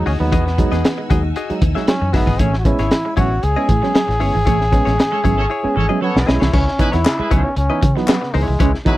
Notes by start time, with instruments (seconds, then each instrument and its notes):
Already playing: string machine D#4 F#5 G#5 E6
0.06 fingered electric bass D2, reed electric piano E3, trombone C#4, clean electric guitar F#4 G#4 D#5, open hi-hat
0.19 fingered electric bass D#2, clean electric guitar E3, reed electric piano F#3 G#3 D#4, trombone B3, muted clean electric guitar stroke
0.32 fingered electric bass E2, clean electric guitar E3 F#4 G#4 D#5, reed electric piano E3, kick, closed hi-hat
0.46 muted clean electric guitar stroke, snare
0.58 reed electric piano F#3 G#3 D#4, muted clean electric guitar stroke, kick, closed hi-hat
0.72 fingered electric bass E2, reed electric piano G#3 D#4, clean electric guitar B3 F#4 G#4 D#5, snare, closed hi-hat
0.84 reed electric piano E3, muted clean electric guitar stroke, snare, closed hi-hat
0.98 clean electric guitar G#3, muted clean electric guitar stroke
1.10 fingered electric bass D#2, reed electric piano F#3 G#3 D#4, clean electric guitar F#3 F#4 G#4 D#5, kick, closed hi-hat
1.24 reed electric piano G#3 D#4, muted clean electric guitar stroke
1.36 clean electric guitar F#4 G#4 D#5, muted clean electric guitar stroke, closed hi-hat
1.50 reed electric piano F#3 G#3 D#4, muted fingered electric bass stroke, closed hi-hat
1.62 fingered electric bass D#2, clean electric guitar E3, muted clean electric guitar stroke, kick, closed hi-hat
1.75 clean electric guitar F#3 F#4 G#4 E5, reed electric piano F#3 G#3 D#4, snare
1.87 clean electric guitar F#3, reed electric piano G#3 D#4, trombone C#4, muted clean electric guitar stroke, snare, closed hi-hat
2.01 fingered electric bass F#2, reed electric piano E3, muted clean electric guitar stroke
2.13 fingered electric bass G1, reed electric piano F#3 G#3 D#4, trombone B3, clean electric guitar F#4 G#4 E5, kick, snare, open hi-hat
2.27 fingered electric bass G#1, clean electric guitar E3 F#4 G#4 D#5, kick
2.39 fingered electric bass A1, reed electric piano A2 E3, clean electric guitar A3 E4 G#4 C#5, trombone C#4, string machine C#5 E5, kick, closed hi-hat
2.53 muted clean electric guitar stroke, snare
2.59 trombone F#4
2.65 reed electric piano G#3 B3 C#4, trombone E4, muted clean electric guitar stroke, kick, closed hi-hat
2.79 fingered electric bass G#1, clean electric guitar G#3 E4 G#4 C#5, snare, closed hi-hat
2.91 reed electric piano A2 E3, muted clean electric guitar stroke, snare, closed hi-hat
3.05 clean electric guitar G#3, muted clean electric guitar stroke
3.17 fingered electric bass A1, clean electric guitar F#3 E4 G#4 C#5, reed electric piano G#3 B3 C#4, trombone F#4, kick, closed hi-hat
3.31 reed electric piano B3 C#4, muted clean electric guitar stroke
3.43 fingered electric bass C#2, trombone G#4, muted clean electric guitar stroke, closed hi-hat
3.56 reed electric piano G#3 B3 C#4, clean electric guitar E4 G#4 D#5
3.68 reed electric piano A2 E3, fingered electric bass A2, clean electric guitar E3, muted clean electric guitar stroke, kick, closed hi-hat
3.82 clean electric guitar F#3, reed electric piano G#3 B3 C#4, muted clean electric guitar stroke, snare
3.95 clean electric guitar F#3, reed electric piano B3 C#4, muted clean electric guitar stroke, snare, closed hi-hat
4.08 fingered electric bass A1, reed electric piano A2 E3, muted clean electric guitar stroke, snare
4.20 fingered electric bass G1, reed electric piano G#3 B3 C#4, clean electric guitar E4 G#4 C#5, open hi-hat
4.34 fingered electric bass G#1, clean electric guitar E3, muted clean electric guitar stroke
4.45 fingered electric bass A1, reed electric piano A2 E3, clean electric guitar A3 E4 G#4 C#5, kick, closed hi-hat
4.59 muted clean electric guitar stroke, snare
4.72 reed electric piano G#3 B3 C#4, muted clean electric guitar stroke, kick, closed hi-hat
4.85 fingered electric bass A1, clean electric guitar G#3 E4 G#4 C#5, reed electric piano B3 C#4, snare, closed hi-hat
4.98 reed electric piano A2 E3, muted clean electric guitar stroke, snare, closed hi-hat
5.12 clean electric guitar G#3, horn section C#4 A4 C#5, muted clean electric guitar stroke
5.24 fingered electric bass G#1, clean electric guitar F#3 E4 G#4 C#5, reed electric piano G#3 B3 C#4, kick, closed hi-hat
5.38 reed electric piano B3 C#4, horn section C#4 A4 C#5, muted clean electric guitar stroke
5.50 clean electric guitar E4 G#4 C#5, muted clean electric guitar stroke
5.63 reed electric piano G#3 B3 C#4, muted fingered electric bass stroke
5.76 fingered electric bass G#1, reed electric piano A2 E3, clean electric guitar E3, horn section C#4 A4 C#5, muted clean electric guitar stroke
5.89 clean electric guitar F#3 E4 G#4 D#5, reed electric piano G#3 B3 C#4
6.01 clean electric guitar F#3, reed electric piano B3 C#4, trombone B3, horn section C#4 A4 C#5, muted clean electric guitar stroke
6.15 fingered electric bass B1, reed electric piano A2 E3, muted clean electric guitar stroke, snare
6.26 fingered electric bass B1, reed electric piano G#3 B3 C#4, clean electric guitar E4 G#4 D#5, trombone E4, snare
6.40 fingered electric bass C2, clean electric guitar E3 E4 G#4 C#5, snare
6.52 fingered electric bass C#2, reed electric piano C#3, clean electric guitar C#4 E4 B4 C#5, trombone C#4, kick, crash
6.66 muted clean electric guitar stroke, snare
6.78 reed electric piano E3 B3 D#4, horn section E4 G#4 B4, muted clean electric guitar stroke, kick, closed hi-hat
6.92 fingered electric bass E2, clean electric guitar B3 E4 B4 C#5, reed electric piano B3 D#4, trombone E4, snare, closed hi-hat
7.05 reed electric piano C#3, muted clean electric guitar stroke, snare, clap, closed hi-hat
7.19 clean electric guitar G#3, horn section E4 G#4 B4, muted clean electric guitar stroke, muted fingered electric bass stroke
7.31 fingered electric bass C#2, reed electric piano E3 B3 D#4, clean electric guitar F#3 E4 B4 C#5, trombone C#4, kick, closed hi-hat
7.44 reed electric piano B3 D#4, muted clean electric guitar stroke
7.56 fingered electric bass C#2, trombone C#4, muted clean electric guitar stroke, closed hi-hat
7.70 reed electric piano E3 B3 D#4, clean electric guitar E4 B4 D#5
7.82 reed electric piano C#3, fingered electric bass C#3, clean electric guitar E3, kick, closed hi-hat
7.96 reed electric piano E3 B3 D#4, clean electric guitar F#3, trombone B3, muted clean electric guitar stroke, snare
8.08 clean electric guitar F#3, reed electric piano B3 D#4, muted clean electric guitar stroke, snare, clap, closed hi-hat
8.22 reed electric piano C#3, muted clean electric guitar stroke, snare
8.34 fingered electric bass C#2, reed electric piano E3 B3 D#4, trombone G#3, clean electric guitar E4 B4 C#5, open hi-hat
8.48 fingered electric bass C2, clean electric guitar E3, muted clean electric guitar stroke
8.59 fingered electric bass C#2, reed electric piano C#3, trombone G#3, clean electric guitar C#4 E4 B4 C#5, kick, closed hi-hat
8.73 muted clean electric guitar stroke, snare
8.85 reed electric piano E3 B3 D#4, trombone F#3, horn section E4 G#4 B4, muted clean electric guitar stroke, kick, closed hi-hat